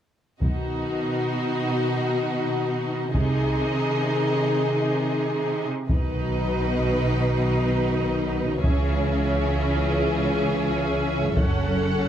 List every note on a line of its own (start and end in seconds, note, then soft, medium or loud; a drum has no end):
0.41 0.84 B1 soft
0.41 3.11 B2 soft
0.41 3.11 D#3 soft
0.41 3.11 D#4 soft
0.41 3.11 F#4 soft
0.41 3.11 D#5 soft
0.41 taiko soft
3.14 3.57 C2 soft
3.14 5.65 C3 soft
3.14 5.62 D#3 medium
3.14 5.65 D#4 soft
3.14 5.62 G#4 medium
3.14 5.65 G#4 soft
3.14 5.66 D#5 medium
3.14 taiko soft
5.89 8.61 B1 soft
5.89 8.60 B2 soft
5.89 8.61 D#3 soft
5.89 8.61 D#4 soft
5.89 8.61 F#4 soft
5.89 8.60 B4 soft
5.89 8.60 D#5 soft
5.89 taiko soft
8.64 11.38 C#2 soft
8.64 11.38 C#3 soft
8.64 11.34 E3 soft
8.64 11.37 C#4 soft
8.64 11.34 G#4 soft
8.64 11.33 E5 soft
8.64 taiko medium
11.36 12.08 F#1 medium
11.36 12.08 F#2 soft
11.36 12.08 C#3 medium
11.36 12.08 C#4 soft
11.36 12.08 A4 soft
11.36 12.08 F#5 medium
11.36 taiko medium